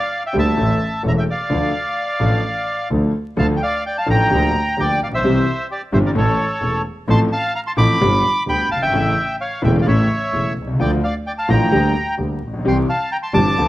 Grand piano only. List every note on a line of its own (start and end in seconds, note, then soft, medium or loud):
0.33 0.54 D2 medium
0.33 0.54 D3 medium
0.33 0.53 G3 medium
0.33 0.54 A#3 medium
0.33 0.54 G4 medium
0.56 0.77 A1 medium
0.56 0.77 A2 medium
0.56 0.77 E3 medium
0.56 0.77 A3 medium
0.56 0.77 C#4 medium
0.56 0.77 A4 medium
1.03 1.23 E1 medium
1.03 1.23 E2 medium
1.03 1.23 E3 medium
1.03 1.23 A3 medium
1.03 1.23 C#4 medium
1.03 1.23 A4 medium
1.50 1.70 D2 medium
1.50 1.70 D3 medium
1.50 1.70 F3 medium
1.50 1.70 A3 medium
1.50 1.70 D4 medium
1.50 1.70 A4 medium
2.20 2.40 A1 medium
2.20 2.40 A2 medium
2.20 2.40 F3 medium
2.20 2.40 A3 medium
2.20 2.40 D4 medium
2.20 2.40 A4 medium
2.90 3.11 D2 medium
2.90 3.10 D3 medium
2.90 3.10 F3 medium
2.90 3.11 A3 medium
2.90 3.11 D4 medium
2.90 3.11 A4 medium
3.37 3.57 D2 medium
3.37 3.57 D3 medium
3.37 3.57 F3 medium
3.37 3.57 A3 medium
3.37 3.57 D4 medium
3.37 3.57 A4 medium
4.06 4.27 A1 loud
4.06 4.27 A2 medium
4.06 4.27 F3 medium
4.06 4.27 A3 medium
4.06 4.27 D4 medium
4.06 4.27 A4 medium
4.30 4.50 D2 medium
4.30 4.50 D3 medium
4.30 4.50 F3 medium
4.30 4.50 A#3 medium
4.30 4.50 D4 medium
4.30 4.50 G4 medium
4.77 4.97 D2 medium
4.77 4.97 D3 medium
4.77 4.97 F3 soft
4.77 4.97 A#3 soft
4.77 4.97 D4 soft
4.77 4.97 G4 medium
5.06 5.12 A1 medium
5.12 5.18 A#1 medium
5.18 5.24 B1 medium
5.24 5.44 C2 medium
5.24 5.43 C3 loud
5.24 5.43 E3 medium
5.24 5.43 G3 medium
5.24 5.43 C4 medium
5.24 5.43 G4 medium
5.92 6.12 G1 medium
5.92 6.12 G2 medium
5.92 6.12 E3 medium
5.92 6.12 G3 medium
5.92 6.12 C4 medium
5.92 6.12 G4 medium
6.15 6.35 A1 medium
6.15 6.35 A2 loud
6.15 6.35 E3 medium
6.15 6.35 A3 medium
6.15 6.35 C#4 medium
6.15 6.35 A4 medium
6.61 6.81 E1 medium
6.61 6.81 E2 medium
6.61 6.81 E3 soft
6.61 6.81 A3 soft
6.61 6.81 C#4 soft
6.61 6.81 A4 medium
7.08 7.27 A1 loud
7.08 7.27 A2 medium
7.08 7.27 F3 medium
7.08 7.27 A3 medium
7.08 7.27 C4 medium
7.08 7.28 A4 medium
7.77 7.97 A1 loud
7.77 7.97 A2 loud
7.77 7.96 F3 medium
7.77 7.96 A3 medium
7.77 7.97 C4 medium
7.77 7.97 A4 medium
8.01 8.20 G1 loud
8.01 8.20 G2 loud
8.01 8.20 D3 medium
8.01 8.20 G3 medium
8.01 8.20 B3 medium
8.01 8.20 G4 medium
8.46 8.66 D2 medium
8.46 8.66 D3 medium
8.46 8.66 G3 soft
8.46 8.66 B3 soft
8.46 8.66 G4 medium
8.76 8.82 F#1 medium
8.82 8.88 G1 medium
8.88 8.93 G#1 medium
8.93 9.13 A1 medium
8.93 9.13 A2 loud
8.93 9.12 C#3 medium
8.93 9.13 E3 medium
8.93 9.13 A3 medium
8.93 9.13 E4 loud
9.62 9.82 E1 loud
9.62 9.82 E2 loud
9.62 9.82 C#3 medium
9.62 9.82 E3 medium
9.62 9.82 A3 medium
9.62 9.82 E4 medium
9.85 10.06 A1 medium
9.85 10.06 A2 medium
9.85 10.05 C#3 medium
9.85 10.06 E3 medium
9.85 10.06 A3 medium
9.85 10.06 E4 medium
10.32 10.53 E1 medium
10.32 10.53 E2 soft
10.32 10.52 C#3 soft
10.32 10.52 E3 soft
10.32 10.53 A3 soft
10.32 10.53 E4 soft
10.62 10.68 B1 medium
10.67 10.73 C2 medium
10.73 10.79 C#2 medium
10.79 10.99 D2 medium
10.79 10.99 D3 medium
10.79 10.99 F3 medium
10.79 10.99 A3 medium
10.79 10.99 F4 medium
11.48 11.69 A1 medium
11.48 11.68 A2 medium
11.48 11.68 D3 medium
11.48 11.68 F3 medium
11.48 11.68 A3 medium
11.48 11.68 F4 medium
11.71 11.91 D2 medium
11.71 11.91 D3 loud
11.71 11.91 G3 medium
11.71 11.92 A#3 medium
11.71 11.92 G4 medium
12.18 12.38 D2 medium
12.18 12.38 D3 medium
12.18 12.38 G3 soft
12.18 12.38 A#3 soft
12.18 12.38 G4 medium
12.47 12.53 A1 medium
12.53 12.59 A#1 medium
12.59 12.65 B1 medium
12.64 12.84 C2 medium
12.64 12.84 C3 loud
12.64 12.84 E3 medium
12.64 12.84 G3 medium
12.64 12.84 C4 medium
12.64 12.84 G4 medium
13.33 13.53 G1 loud
13.33 13.53 G2 loud
13.33 13.53 E3 medium
13.33 13.53 G3 medium
13.33 13.53 C4 medium
13.33 13.53 G4 medium
13.57 13.68 D2 loud
13.57 13.68 D3 loud
13.57 13.68 F3 medium
13.57 13.68 A3 medium
13.57 13.68 F4 medium